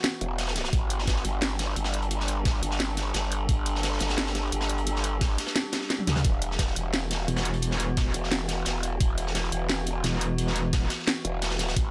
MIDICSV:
0, 0, Header, 1, 5, 480
1, 0, Start_track
1, 0, Key_signature, 1, "minor"
1, 0, Tempo, 344828
1, 1016, Time_signature, 4, 2, 24, 8
1, 16577, End_track
2, 0, Start_track
2, 0, Title_t, "Synth drone"
2, 0, Program_c, 0, 95
2, 0, Note_on_c, 0, 52, 82
2, 0, Note_on_c, 0, 59, 76
2, 0, Note_on_c, 0, 66, 92
2, 960, Note_off_c, 0, 59, 0
2, 961, Note_off_c, 0, 52, 0
2, 961, Note_off_c, 0, 66, 0
2, 1015, Note_on_c, 0, 62, 75
2, 1016, Note_on_c, 0, 55, 85
2, 1016, Note_on_c, 0, 69, 91
2, 8640, Note_off_c, 0, 62, 0
2, 8640, Note_off_c, 0, 69, 0
2, 8641, Note_off_c, 0, 55, 0
2, 8695, Note_on_c, 0, 52, 84
2, 8696, Note_on_c, 0, 59, 75
2, 8697, Note_on_c, 0, 66, 89
2, 16320, Note_off_c, 0, 52, 0
2, 16321, Note_off_c, 0, 59, 0
2, 16321, Note_off_c, 0, 66, 0
2, 16377, Note_on_c, 0, 62, 76
2, 16377, Note_on_c, 0, 69, 89
2, 16378, Note_on_c, 0, 55, 84
2, 16577, Note_off_c, 0, 55, 0
2, 16577, Note_off_c, 0, 62, 0
2, 16577, Note_off_c, 0, 69, 0
2, 16577, End_track
3, 0, Start_track
3, 0, Title_t, "Wobble bass"
3, 0, Program_c, 1, 39
3, 295, Note_on_c, 1, 28, 99
3, 996, Note_off_c, 1, 28, 0
3, 1015, Note_on_c, 1, 31, 99
3, 1716, Note_off_c, 1, 31, 0
3, 1735, Note_on_c, 1, 31, 96
3, 2436, Note_off_c, 1, 31, 0
3, 2455, Note_on_c, 1, 31, 95
3, 3637, Note_off_c, 1, 31, 0
3, 3655, Note_on_c, 1, 31, 92
3, 4356, Note_off_c, 1, 31, 0
3, 4375, Note_on_c, 1, 31, 97
3, 4836, Note_off_c, 1, 31, 0
3, 4857, Note_on_c, 1, 31, 100
3, 5557, Note_off_c, 1, 31, 0
3, 5576, Note_on_c, 1, 31, 95
3, 6277, Note_off_c, 1, 31, 0
3, 6298, Note_on_c, 1, 31, 98
3, 7478, Note_off_c, 1, 31, 0
3, 8455, Note_on_c, 1, 38, 94
3, 8676, Note_off_c, 1, 38, 0
3, 8695, Note_on_c, 1, 28, 98
3, 9396, Note_off_c, 1, 28, 0
3, 9414, Note_on_c, 1, 28, 97
3, 10116, Note_off_c, 1, 28, 0
3, 11334, Note_on_c, 1, 28, 96
3, 12036, Note_off_c, 1, 28, 0
3, 12055, Note_on_c, 1, 28, 97
3, 12516, Note_off_c, 1, 28, 0
3, 12535, Note_on_c, 1, 28, 99
3, 13236, Note_off_c, 1, 28, 0
3, 13254, Note_on_c, 1, 28, 99
3, 13956, Note_off_c, 1, 28, 0
3, 15655, Note_on_c, 1, 28, 100
3, 16357, Note_off_c, 1, 28, 0
3, 16376, Note_on_c, 1, 31, 95
3, 16577, Note_off_c, 1, 31, 0
3, 16577, End_track
4, 0, Start_track
4, 0, Title_t, "Wobble bass"
4, 0, Program_c, 2, 39
4, 10135, Note_on_c, 2, 28, 98
4, 11316, Note_off_c, 2, 28, 0
4, 13976, Note_on_c, 2, 28, 99
4, 15157, Note_off_c, 2, 28, 0
4, 16577, End_track
5, 0, Start_track
5, 0, Title_t, "Drums"
5, 52, Note_on_c, 9, 42, 85
5, 55, Note_off_c, 9, 42, 0
5, 55, Note_on_c, 9, 38, 124
5, 55, Note_on_c, 9, 42, 73
5, 194, Note_off_c, 9, 38, 0
5, 194, Note_off_c, 9, 42, 0
5, 295, Note_on_c, 9, 42, 82
5, 435, Note_off_c, 9, 42, 0
5, 534, Note_on_c, 9, 42, 74
5, 536, Note_off_c, 9, 42, 0
5, 536, Note_on_c, 9, 42, 75
5, 537, Note_on_c, 9, 38, 99
5, 651, Note_off_c, 9, 42, 0
5, 651, Note_on_c, 9, 42, 75
5, 661, Note_off_c, 9, 38, 0
5, 661, Note_on_c, 9, 38, 105
5, 776, Note_off_c, 9, 42, 0
5, 776, Note_on_c, 9, 42, 85
5, 778, Note_off_c, 9, 38, 0
5, 778, Note_on_c, 9, 38, 103
5, 779, Note_off_c, 9, 42, 0
5, 779, Note_on_c, 9, 42, 75
5, 893, Note_off_c, 9, 38, 0
5, 893, Note_on_c, 9, 38, 97
5, 899, Note_off_c, 9, 42, 0
5, 899, Note_on_c, 9, 42, 86
5, 1015, Note_on_c, 9, 36, 115
5, 1016, Note_off_c, 9, 42, 0
5, 1016, Note_on_c, 9, 42, 75
5, 1023, Note_off_c, 9, 42, 0
5, 1023, Note_on_c, 9, 42, 87
5, 1032, Note_off_c, 9, 38, 0
5, 1155, Note_off_c, 9, 36, 0
5, 1162, Note_off_c, 9, 42, 0
5, 1255, Note_on_c, 9, 42, 65
5, 1371, Note_on_c, 9, 38, 45
5, 1394, Note_off_c, 9, 42, 0
5, 1495, Note_on_c, 9, 36, 59
5, 1496, Note_on_c, 9, 42, 72
5, 1497, Note_off_c, 9, 42, 0
5, 1497, Note_on_c, 9, 42, 84
5, 1503, Note_off_c, 9, 38, 0
5, 1503, Note_on_c, 9, 38, 106
5, 1619, Note_off_c, 9, 38, 0
5, 1619, Note_on_c, 9, 38, 42
5, 1635, Note_off_c, 9, 36, 0
5, 1636, Note_off_c, 9, 42, 0
5, 1736, Note_on_c, 9, 42, 85
5, 1740, Note_off_c, 9, 42, 0
5, 1740, Note_on_c, 9, 42, 68
5, 1758, Note_off_c, 9, 38, 0
5, 1880, Note_off_c, 9, 42, 0
5, 1976, Note_on_c, 9, 38, 110
5, 1976, Note_on_c, 9, 42, 73
5, 1983, Note_off_c, 9, 42, 0
5, 1983, Note_on_c, 9, 42, 79
5, 2115, Note_off_c, 9, 38, 0
5, 2122, Note_off_c, 9, 42, 0
5, 2215, Note_on_c, 9, 42, 84
5, 2216, Note_on_c, 9, 38, 97
5, 2225, Note_off_c, 9, 42, 0
5, 2225, Note_on_c, 9, 42, 69
5, 2355, Note_off_c, 9, 38, 0
5, 2364, Note_off_c, 9, 42, 0
5, 2455, Note_on_c, 9, 42, 76
5, 2457, Note_off_c, 9, 42, 0
5, 2457, Note_on_c, 9, 42, 66
5, 2567, Note_on_c, 9, 38, 103
5, 2572, Note_off_c, 9, 42, 0
5, 2572, Note_on_c, 9, 42, 72
5, 2696, Note_off_c, 9, 42, 0
5, 2696, Note_on_c, 9, 42, 86
5, 2706, Note_off_c, 9, 38, 0
5, 2815, Note_off_c, 9, 42, 0
5, 2815, Note_on_c, 9, 42, 54
5, 2936, Note_off_c, 9, 42, 0
5, 2936, Note_on_c, 9, 42, 81
5, 2937, Note_off_c, 9, 42, 0
5, 2937, Note_on_c, 9, 42, 96
5, 3062, Note_on_c, 9, 38, 53
5, 3076, Note_off_c, 9, 42, 0
5, 3170, Note_on_c, 9, 42, 64
5, 3176, Note_off_c, 9, 42, 0
5, 3176, Note_on_c, 9, 42, 91
5, 3201, Note_off_c, 9, 38, 0
5, 3315, Note_off_c, 9, 42, 0
5, 3414, Note_on_c, 9, 42, 79
5, 3416, Note_off_c, 9, 42, 0
5, 3416, Note_on_c, 9, 36, 103
5, 3416, Note_on_c, 9, 42, 73
5, 3423, Note_on_c, 9, 38, 106
5, 3555, Note_off_c, 9, 36, 0
5, 3555, Note_off_c, 9, 42, 0
5, 3562, Note_off_c, 9, 38, 0
5, 3657, Note_on_c, 9, 42, 89
5, 3668, Note_off_c, 9, 42, 0
5, 3668, Note_on_c, 9, 42, 66
5, 3771, Note_on_c, 9, 38, 49
5, 3807, Note_off_c, 9, 42, 0
5, 3896, Note_off_c, 9, 38, 0
5, 3896, Note_on_c, 9, 38, 108
5, 3896, Note_on_c, 9, 42, 76
5, 3905, Note_off_c, 9, 42, 0
5, 3905, Note_on_c, 9, 42, 87
5, 4036, Note_off_c, 9, 38, 0
5, 4044, Note_off_c, 9, 42, 0
5, 4133, Note_on_c, 9, 38, 62
5, 4136, Note_on_c, 9, 42, 91
5, 4143, Note_off_c, 9, 42, 0
5, 4143, Note_on_c, 9, 42, 65
5, 4272, Note_off_c, 9, 38, 0
5, 4282, Note_off_c, 9, 42, 0
5, 4370, Note_on_c, 9, 42, 95
5, 4377, Note_off_c, 9, 42, 0
5, 4377, Note_on_c, 9, 42, 78
5, 4381, Note_on_c, 9, 38, 116
5, 4516, Note_off_c, 9, 42, 0
5, 4521, Note_off_c, 9, 38, 0
5, 4617, Note_on_c, 9, 42, 86
5, 4756, Note_off_c, 9, 42, 0
5, 4856, Note_on_c, 9, 36, 108
5, 4856, Note_on_c, 9, 42, 83
5, 4859, Note_off_c, 9, 42, 0
5, 4859, Note_on_c, 9, 42, 92
5, 4995, Note_off_c, 9, 36, 0
5, 4998, Note_off_c, 9, 42, 0
5, 5096, Note_on_c, 9, 42, 92
5, 5100, Note_off_c, 9, 42, 0
5, 5100, Note_on_c, 9, 42, 62
5, 5224, Note_on_c, 9, 38, 47
5, 5239, Note_off_c, 9, 42, 0
5, 5335, Note_on_c, 9, 42, 76
5, 5338, Note_off_c, 9, 38, 0
5, 5338, Note_on_c, 9, 38, 109
5, 5342, Note_off_c, 9, 42, 0
5, 5342, Note_on_c, 9, 42, 90
5, 5459, Note_off_c, 9, 38, 0
5, 5459, Note_on_c, 9, 38, 40
5, 5482, Note_off_c, 9, 42, 0
5, 5553, Note_on_c, 9, 42, 81
5, 5575, Note_off_c, 9, 42, 0
5, 5575, Note_on_c, 9, 42, 95
5, 5576, Note_off_c, 9, 38, 0
5, 5576, Note_on_c, 9, 38, 107
5, 5693, Note_off_c, 9, 42, 0
5, 5693, Note_on_c, 9, 42, 76
5, 5697, Note_off_c, 9, 38, 0
5, 5697, Note_on_c, 9, 38, 98
5, 5815, Note_off_c, 9, 38, 0
5, 5815, Note_off_c, 9, 42, 0
5, 5815, Note_on_c, 9, 38, 111
5, 5815, Note_on_c, 9, 42, 81
5, 5816, Note_off_c, 9, 42, 0
5, 5816, Note_on_c, 9, 42, 79
5, 5819, Note_off_c, 9, 38, 0
5, 5819, Note_on_c, 9, 38, 98
5, 5937, Note_off_c, 9, 38, 0
5, 5937, Note_on_c, 9, 38, 106
5, 5944, Note_off_c, 9, 42, 0
5, 5944, Note_on_c, 9, 42, 74
5, 6053, Note_off_c, 9, 38, 0
5, 6053, Note_on_c, 9, 38, 108
5, 6055, Note_off_c, 9, 42, 0
5, 6055, Note_on_c, 9, 42, 89
5, 6059, Note_off_c, 9, 42, 0
5, 6059, Note_on_c, 9, 42, 73
5, 6192, Note_off_c, 9, 38, 0
5, 6199, Note_off_c, 9, 42, 0
5, 6296, Note_on_c, 9, 42, 79
5, 6298, Note_off_c, 9, 42, 0
5, 6298, Note_on_c, 9, 42, 62
5, 6415, Note_on_c, 9, 38, 108
5, 6420, Note_off_c, 9, 42, 0
5, 6420, Note_on_c, 9, 42, 77
5, 6535, Note_off_c, 9, 42, 0
5, 6535, Note_on_c, 9, 42, 92
5, 6555, Note_off_c, 9, 38, 0
5, 6655, Note_off_c, 9, 42, 0
5, 6655, Note_on_c, 9, 42, 61
5, 6775, Note_off_c, 9, 42, 0
5, 6775, Note_on_c, 9, 42, 82
5, 6783, Note_off_c, 9, 42, 0
5, 6783, Note_on_c, 9, 42, 81
5, 6901, Note_on_c, 9, 38, 51
5, 6922, Note_off_c, 9, 42, 0
5, 7014, Note_on_c, 9, 42, 70
5, 7015, Note_off_c, 9, 42, 0
5, 7015, Note_on_c, 9, 42, 95
5, 7041, Note_off_c, 9, 38, 0
5, 7154, Note_off_c, 9, 42, 0
5, 7254, Note_on_c, 9, 38, 120
5, 7255, Note_on_c, 9, 36, 99
5, 7255, Note_on_c, 9, 42, 80
5, 7258, Note_off_c, 9, 42, 0
5, 7258, Note_on_c, 9, 42, 91
5, 7393, Note_off_c, 9, 38, 0
5, 7394, Note_off_c, 9, 36, 0
5, 7397, Note_off_c, 9, 42, 0
5, 7492, Note_on_c, 9, 42, 78
5, 7495, Note_off_c, 9, 42, 0
5, 7495, Note_on_c, 9, 42, 96
5, 7497, Note_on_c, 9, 38, 96
5, 7606, Note_off_c, 9, 42, 0
5, 7606, Note_on_c, 9, 42, 82
5, 7614, Note_off_c, 9, 38, 0
5, 7614, Note_on_c, 9, 38, 104
5, 7734, Note_off_c, 9, 38, 0
5, 7734, Note_off_c, 9, 42, 0
5, 7734, Note_on_c, 9, 38, 109
5, 7734, Note_on_c, 9, 42, 82
5, 7737, Note_off_c, 9, 42, 0
5, 7737, Note_on_c, 9, 42, 61
5, 7874, Note_off_c, 9, 38, 0
5, 7876, Note_off_c, 9, 42, 0
5, 7968, Note_on_c, 9, 42, 88
5, 7974, Note_off_c, 9, 42, 0
5, 7974, Note_on_c, 9, 38, 59
5, 7974, Note_on_c, 9, 42, 95
5, 7979, Note_off_c, 9, 38, 0
5, 7979, Note_on_c, 9, 38, 94
5, 8093, Note_off_c, 9, 38, 0
5, 8093, Note_on_c, 9, 38, 35
5, 8114, Note_off_c, 9, 42, 0
5, 8215, Note_off_c, 9, 38, 0
5, 8215, Note_on_c, 9, 38, 78
5, 8215, Note_on_c, 9, 42, 82
5, 8219, Note_off_c, 9, 42, 0
5, 8219, Note_on_c, 9, 42, 54
5, 8334, Note_on_c, 9, 47, 71
5, 8354, Note_off_c, 9, 38, 0
5, 8358, Note_off_c, 9, 42, 0
5, 8454, Note_on_c, 9, 42, 93
5, 8454, Note_on_c, 9, 45, 90
5, 8455, Note_off_c, 9, 42, 0
5, 8455, Note_on_c, 9, 42, 84
5, 8456, Note_on_c, 9, 38, 106
5, 8473, Note_off_c, 9, 47, 0
5, 8574, Note_off_c, 9, 42, 0
5, 8574, Note_on_c, 9, 42, 85
5, 8575, Note_off_c, 9, 38, 0
5, 8575, Note_off_c, 9, 45, 0
5, 8575, Note_on_c, 9, 38, 104
5, 8575, Note_on_c, 9, 45, 83
5, 8690, Note_off_c, 9, 42, 0
5, 8690, Note_on_c, 9, 42, 86
5, 8694, Note_off_c, 9, 42, 0
5, 8694, Note_on_c, 9, 42, 81
5, 8695, Note_on_c, 9, 36, 111
5, 8714, Note_off_c, 9, 38, 0
5, 8714, Note_off_c, 9, 45, 0
5, 8833, Note_off_c, 9, 42, 0
5, 8834, Note_off_c, 9, 36, 0
5, 8933, Note_on_c, 9, 42, 64
5, 8934, Note_off_c, 9, 42, 0
5, 8934, Note_on_c, 9, 42, 96
5, 9064, Note_on_c, 9, 38, 46
5, 9073, Note_off_c, 9, 42, 0
5, 9171, Note_off_c, 9, 38, 0
5, 9171, Note_on_c, 9, 38, 105
5, 9174, Note_on_c, 9, 42, 79
5, 9175, Note_on_c, 9, 36, 61
5, 9177, Note_off_c, 9, 42, 0
5, 9177, Note_on_c, 9, 42, 82
5, 9286, Note_off_c, 9, 38, 0
5, 9286, Note_on_c, 9, 38, 41
5, 9314, Note_off_c, 9, 36, 0
5, 9316, Note_off_c, 9, 42, 0
5, 9414, Note_on_c, 9, 42, 66
5, 9415, Note_off_c, 9, 42, 0
5, 9415, Note_on_c, 9, 42, 93
5, 9425, Note_off_c, 9, 38, 0
5, 9554, Note_off_c, 9, 42, 0
5, 9655, Note_on_c, 9, 38, 116
5, 9655, Note_on_c, 9, 42, 89
5, 9794, Note_off_c, 9, 38, 0
5, 9795, Note_off_c, 9, 42, 0
5, 9892, Note_on_c, 9, 42, 81
5, 9894, Note_off_c, 9, 42, 0
5, 9894, Note_on_c, 9, 42, 95
5, 9902, Note_on_c, 9, 38, 103
5, 10033, Note_off_c, 9, 42, 0
5, 10042, Note_off_c, 9, 38, 0
5, 10135, Note_on_c, 9, 42, 78
5, 10137, Note_off_c, 9, 42, 0
5, 10137, Note_on_c, 9, 42, 60
5, 10251, Note_off_c, 9, 42, 0
5, 10251, Note_on_c, 9, 42, 87
5, 10254, Note_on_c, 9, 38, 108
5, 10375, Note_off_c, 9, 42, 0
5, 10375, Note_on_c, 9, 42, 92
5, 10394, Note_off_c, 9, 38, 0
5, 10490, Note_off_c, 9, 42, 0
5, 10490, Note_on_c, 9, 42, 59
5, 10609, Note_off_c, 9, 42, 0
5, 10609, Note_on_c, 9, 42, 83
5, 10615, Note_off_c, 9, 42, 0
5, 10615, Note_on_c, 9, 42, 80
5, 10735, Note_on_c, 9, 38, 54
5, 10754, Note_off_c, 9, 42, 0
5, 10855, Note_on_c, 9, 42, 94
5, 10858, Note_off_c, 9, 42, 0
5, 10858, Note_on_c, 9, 42, 67
5, 10874, Note_off_c, 9, 38, 0
5, 10997, Note_off_c, 9, 42, 0
5, 11094, Note_on_c, 9, 42, 79
5, 11095, Note_off_c, 9, 42, 0
5, 11095, Note_on_c, 9, 36, 108
5, 11095, Note_on_c, 9, 42, 76
5, 11100, Note_on_c, 9, 38, 121
5, 11234, Note_off_c, 9, 42, 0
5, 11235, Note_off_c, 9, 36, 0
5, 11240, Note_off_c, 9, 38, 0
5, 11333, Note_on_c, 9, 42, 70
5, 11335, Note_off_c, 9, 42, 0
5, 11335, Note_on_c, 9, 42, 91
5, 11461, Note_on_c, 9, 38, 44
5, 11474, Note_off_c, 9, 42, 0
5, 11575, Note_off_c, 9, 38, 0
5, 11575, Note_on_c, 9, 38, 120
5, 11575, Note_on_c, 9, 42, 79
5, 11579, Note_off_c, 9, 42, 0
5, 11579, Note_on_c, 9, 42, 82
5, 11715, Note_off_c, 9, 38, 0
5, 11718, Note_off_c, 9, 42, 0
5, 11808, Note_on_c, 9, 38, 59
5, 11814, Note_on_c, 9, 42, 90
5, 11820, Note_off_c, 9, 42, 0
5, 11820, Note_on_c, 9, 42, 72
5, 11948, Note_off_c, 9, 38, 0
5, 11959, Note_off_c, 9, 42, 0
5, 12046, Note_on_c, 9, 42, 89
5, 12055, Note_off_c, 9, 42, 0
5, 12055, Note_on_c, 9, 42, 81
5, 12056, Note_on_c, 9, 38, 113
5, 12194, Note_off_c, 9, 42, 0
5, 12195, Note_off_c, 9, 38, 0
5, 12290, Note_on_c, 9, 42, 72
5, 12295, Note_off_c, 9, 42, 0
5, 12295, Note_on_c, 9, 42, 88
5, 12434, Note_off_c, 9, 42, 0
5, 12535, Note_on_c, 9, 36, 119
5, 12535, Note_on_c, 9, 42, 78
5, 12674, Note_off_c, 9, 36, 0
5, 12674, Note_off_c, 9, 42, 0
5, 12774, Note_on_c, 9, 42, 87
5, 12780, Note_off_c, 9, 42, 0
5, 12780, Note_on_c, 9, 42, 64
5, 12902, Note_on_c, 9, 38, 45
5, 12919, Note_off_c, 9, 42, 0
5, 13015, Note_on_c, 9, 42, 71
5, 13019, Note_off_c, 9, 38, 0
5, 13019, Note_off_c, 9, 42, 0
5, 13019, Note_on_c, 9, 38, 122
5, 13019, Note_on_c, 9, 42, 82
5, 13135, Note_off_c, 9, 38, 0
5, 13135, Note_on_c, 9, 38, 37
5, 13158, Note_off_c, 9, 42, 0
5, 13255, Note_on_c, 9, 42, 92
5, 13256, Note_off_c, 9, 42, 0
5, 13256, Note_on_c, 9, 42, 64
5, 13275, Note_off_c, 9, 38, 0
5, 13396, Note_off_c, 9, 42, 0
5, 13495, Note_on_c, 9, 38, 120
5, 13495, Note_on_c, 9, 42, 78
5, 13501, Note_off_c, 9, 42, 0
5, 13501, Note_on_c, 9, 42, 88
5, 13634, Note_off_c, 9, 38, 0
5, 13640, Note_off_c, 9, 42, 0
5, 13730, Note_on_c, 9, 42, 70
5, 13736, Note_off_c, 9, 42, 0
5, 13736, Note_on_c, 9, 42, 86
5, 13875, Note_off_c, 9, 42, 0
5, 13972, Note_on_c, 9, 42, 75
5, 13975, Note_off_c, 9, 42, 0
5, 13975, Note_on_c, 9, 42, 81
5, 13982, Note_on_c, 9, 38, 104
5, 14114, Note_off_c, 9, 42, 0
5, 14121, Note_off_c, 9, 38, 0
5, 14216, Note_on_c, 9, 42, 90
5, 14220, Note_off_c, 9, 42, 0
5, 14220, Note_on_c, 9, 42, 69
5, 14359, Note_off_c, 9, 42, 0
5, 14455, Note_on_c, 9, 42, 76
5, 14576, Note_on_c, 9, 38, 49
5, 14594, Note_off_c, 9, 42, 0
5, 14694, Note_on_c, 9, 42, 75
5, 14695, Note_off_c, 9, 42, 0
5, 14695, Note_on_c, 9, 42, 82
5, 14715, Note_off_c, 9, 38, 0
5, 14834, Note_off_c, 9, 42, 0
5, 14936, Note_on_c, 9, 36, 109
5, 14936, Note_on_c, 9, 42, 74
5, 14939, Note_off_c, 9, 42, 0
5, 14939, Note_on_c, 9, 38, 124
5, 14939, Note_on_c, 9, 42, 91
5, 15076, Note_off_c, 9, 36, 0
5, 15079, Note_off_c, 9, 38, 0
5, 15079, Note_off_c, 9, 42, 0
5, 15173, Note_on_c, 9, 42, 82
5, 15176, Note_on_c, 9, 38, 97
5, 15177, Note_off_c, 9, 42, 0
5, 15177, Note_on_c, 9, 42, 84
5, 15302, Note_off_c, 9, 38, 0
5, 15302, Note_on_c, 9, 38, 37
5, 15316, Note_off_c, 9, 42, 0
5, 15417, Note_off_c, 9, 38, 0
5, 15417, Note_on_c, 9, 38, 119
5, 15417, Note_on_c, 9, 42, 75
5, 15419, Note_off_c, 9, 42, 0
5, 15419, Note_on_c, 9, 42, 86
5, 15556, Note_off_c, 9, 38, 0
5, 15559, Note_off_c, 9, 42, 0
5, 15657, Note_on_c, 9, 42, 81
5, 15797, Note_off_c, 9, 42, 0
5, 15897, Note_on_c, 9, 42, 76
5, 15907, Note_on_c, 9, 38, 99
5, 16009, Note_off_c, 9, 42, 0
5, 16009, Note_on_c, 9, 42, 76
5, 16017, Note_off_c, 9, 38, 0
5, 16017, Note_on_c, 9, 38, 99
5, 16133, Note_off_c, 9, 38, 0
5, 16133, Note_on_c, 9, 38, 113
5, 16137, Note_off_c, 9, 42, 0
5, 16137, Note_on_c, 9, 42, 85
5, 16140, Note_off_c, 9, 42, 0
5, 16140, Note_on_c, 9, 42, 83
5, 16262, Note_off_c, 9, 42, 0
5, 16262, Note_on_c, 9, 42, 78
5, 16264, Note_off_c, 9, 38, 0
5, 16264, Note_on_c, 9, 38, 104
5, 16377, Note_off_c, 9, 42, 0
5, 16377, Note_on_c, 9, 36, 116
5, 16377, Note_on_c, 9, 42, 78
5, 16383, Note_off_c, 9, 42, 0
5, 16383, Note_on_c, 9, 42, 88
5, 16403, Note_off_c, 9, 38, 0
5, 16516, Note_off_c, 9, 36, 0
5, 16522, Note_off_c, 9, 42, 0
5, 16577, End_track
0, 0, End_of_file